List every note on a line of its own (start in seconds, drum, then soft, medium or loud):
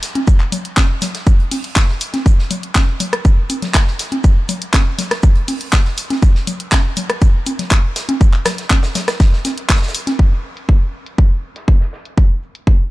0.03 snare soft
0.03 open hi-hat loud
0.03 shaker medium
0.15 closed hi-hat medium
0.15 high conga medium
0.27 kick loud
0.27 closed hi-hat soft
0.27 shaker medium
0.40 clap soft
0.52 open hi-hat loud
0.52 low conga medium
0.52 shaker medium
0.65 closed hi-hat medium
0.77 kick loud
0.77 snare loud
0.77 clap loud
0.77 closed hi-hat soft
0.77 high conga medium
0.77 shaker medium
1.01 snare soft
1.01 open hi-hat loud
1.01 low conga loud
1.01 shaker medium
1.15 snare soft
1.15 closed hi-hat medium
1.27 kick loud
1.27 closed hi-hat soft
1.27 shaker medium
1.40 closed hi-hat soft
1.51 open hi-hat medium
1.51 open hi-hat loud
1.51 high conga medium
1.64 closed hi-hat medium
1.76 kick loud
1.76 snare loud
1.76 clap loud
1.76 closed hi-hat medium
1.76 shaker medium
1.89 snare soft
2.00 open hi-hat loud
2.00 shaker medium
2.13 snare soft
2.13 closed hi-hat medium
2.13 high conga medium
2.26 kick loud
2.26 closed hi-hat soft
2.26 shaker medium
2.39 snare soft
2.51 open hi-hat loud
2.51 low conga medium
2.51 shaker medium
2.63 closed hi-hat medium
2.75 kick loud
2.75 snare loud
2.75 clap loud
2.75 closed hi-hat soft
2.75 high conga medium
2.75 shaker medium
3.00 open hi-hat loud
3.00 low conga medium
3.00 shaker medium
3.13 cross-stick medium
3.13 closed hi-hat medium
3.25 kick loud
3.25 closed hi-hat medium
3.25 shaker medium
3.50 open hi-hat loud
3.50 high conga medium
3.50 shaker medium
3.62 snare soft
3.62 closed hi-hat medium
3.62 low conga medium
3.74 kick loud
3.74 snare loud
3.74 clap loud
3.74 closed hi-hat medium
3.74 shaker medium
3.87 snare soft
3.99 snare medium
3.99 open hi-hat loud
3.99 shaker medium
4.12 closed hi-hat medium
4.12 high conga medium
4.24 kick loud
4.24 closed hi-hat medium
4.24 shaker medium
4.49 open hi-hat loud
4.49 low conga medium
4.49 shaker medium
4.62 closed hi-hat medium
4.73 kick loud
4.73 snare loud
4.73 clap loud
4.73 closed hi-hat medium
4.73 high conga medium
4.73 shaker medium
4.99 snare soft
4.99 open hi-hat loud
4.99 low conga medium
4.99 shaker medium
5.11 cross-stick medium
5.11 snare medium
5.11 closed hi-hat medium
5.23 kick loud
5.23 closed hi-hat medium
5.23 shaker medium
5.35 closed hi-hat soft
5.48 open hi-hat medium
5.48 high conga medium
5.61 closed hi-hat medium
5.73 kick loud
5.73 snare loud
5.73 clap loud
5.73 closed hi-hat medium
5.73 shaker medium
5.85 snare soft
5.97 open hi-hat loud
5.97 shaker medium
6.10 snare soft
6.10 closed hi-hat medium
6.10 high conga medium
6.22 kick loud
6.22 closed hi-hat medium
6.22 shaker medium
6.35 snare soft
6.47 open hi-hat loud
6.47 low conga medium
6.47 shaker medium
6.60 closed hi-hat medium
6.72 kick loud
6.72 snare loud
6.72 clap loud
6.72 closed hi-hat medium
6.72 high conga medium
6.72 shaker medium
6.96 open hi-hat loud
6.96 low conga medium
6.96 shaker medium
7.10 cross-stick medium
7.10 closed hi-hat medium
7.22 kick loud
7.22 closed hi-hat medium
7.22 shaker medium
7.46 open hi-hat medium
7.46 high conga medium
7.46 shaker medium
7.59 snare soft
7.59 closed hi-hat medium
7.59 low conga medium
7.70 kick loud
7.70 clap loud
7.70 closed hi-hat medium
7.70 shaker medium
7.96 snare loud
7.96 open hi-hat medium
7.96 shaker medium
8.09 closed hi-hat medium
8.09 high conga medium
8.21 kick loud
8.21 closed hi-hat medium
8.21 shaker medium
8.33 clap soft
8.45 cross-stick medium
8.45 snare loud
8.45 open hi-hat loud
8.45 low conga medium
8.45 shaker medium
8.58 snare soft
8.58 closed hi-hat medium
8.70 kick loud
8.70 snare soft
8.70 clap loud
8.70 closed hi-hat medium
8.70 high conga medium
8.70 shaker medium
8.83 snare loud
8.83 shaker medium
8.95 snare loud
8.95 open hi-hat loud
8.95 low conga medium
8.95 shaker medium
9.08 cross-stick medium
9.08 snare loud
9.08 closed hi-hat medium
9.08 shaker medium
9.20 kick loud
9.20 snare medium
9.20 closed hi-hat medium
9.20 shaker medium
9.33 snare soft
9.45 snare soft
9.45 open hi-hat loud
9.45 high conga medium
9.45 shaker medium
9.58 closed hi-hat medium
9.69 kick medium
9.69 snare medium
9.69 clap loud
9.69 closed hi-hat medium
9.69 shaker medium
9.76 snare medium
9.76 shaker medium
9.82 snare medium
9.82 shaker medium
9.88 snare medium
9.88 shaker medium
9.94 open hi-hat loud
9.94 shaker medium
10.07 snare soft
10.07 closed hi-hat medium
10.07 high conga medium
10.19 kick loud
10.19 closed hi-hat medium
10.32 snare soft
10.45 shaker medium
10.57 closed hi-hat medium
10.69 kick medium
10.69 closed hi-hat medium
10.94 shaker medium
11.06 closed hi-hat medium
11.18 kick loud
11.18 closed hi-hat medium
11.43 shaker medium
11.56 snare soft
11.56 closed hi-hat medium
11.68 kick loud
11.68 closed hi-hat medium
11.81 snare soft
11.93 snare soft
11.93 shaker medium
12.05 closed hi-hat medium
12.18 kick loud
12.18 closed hi-hat soft
12.43 shaker medium
12.55 closed hi-hat medium
12.67 kick loud
12.67 closed hi-hat medium